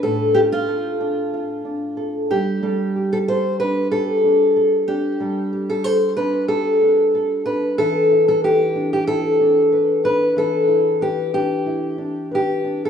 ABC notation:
X:1
M:4/4
L:1/16
Q:"Swing 16ths" 1/4=93
K:Gmix
V:1 name="Steel-string acoustic guitar"
A2 G F8- F3 G2- | G3 A c2 B2 A6 G2- | G3 A c2 B2 A6 B2 | A3 A G3 G A6 B2 |
A4 G2 G6 G3 A |]
V:2 name="Nylon-string guitar"
[A,,DFA]2 F2 A2 D2 F2 D2 A2 G,2 | [G,A]2 G2 A2 D2 G2 D2 A2 D2 | [G,A]2 G2 A2 D2 G2 D2 A2 D2 | [E,B]2 E2 B2 D2 E2 D2 B2 D2 |
[E,B]2 E2 B2 D2 E2 D2 B2 D2 |]